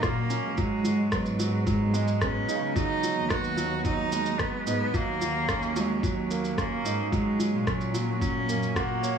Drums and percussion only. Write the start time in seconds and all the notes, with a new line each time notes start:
0.03 kick, cross-stick, shaker
0.30 shaker
0.57 kick, shaker
0.85 shaker
1.12 kick, cross-stick, shaker
1.26 shaker
1.39 shaker
1.67 kick, shaker
1.94 shaker
2.08 shaker
2.21 kick, cross-stick, shaker
2.49 shaker
2.76 kick, shaker
3.03 shaker
3.30 kick, cross-stick, shaker
3.44 shaker
3.58 shaker
3.85 kick, shaker
4.12 shaker
4.26 shaker
4.39 kick, cross-stick, shaker
4.67 shaker
4.94 kick, shaker
5.21 shaker
5.49 kick, cross-stick, shaker
5.62 shaker
5.76 shaker
6.03 kick, shaker
6.31 shaker
6.45 shaker
6.58 kick, cross-stick, shaker
6.85 shaker
7.13 kick, shaker
7.40 shaker
7.67 kick, cross-stick, shaker
7.81 shaker
7.94 shaker
8.22 kick, shaker
8.49 shaker
8.63 shaker
8.76 kick, cross-stick, shaker
9.04 shaker